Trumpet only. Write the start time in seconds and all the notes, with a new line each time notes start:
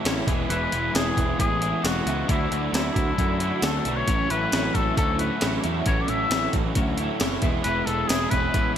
0.50 B4
0.95 G#4
1.40 G#4
1.84 F#4
2.29 E4
2.74 E4
3.63 A4
3.96 C#5
4.31 B4
4.75 A4
4.97 A4
5.19 B4
5.86 C#5
6.01 D5
6.09 E5
7.64 B4
7.86 A4
8.08 G#4
8.30 B4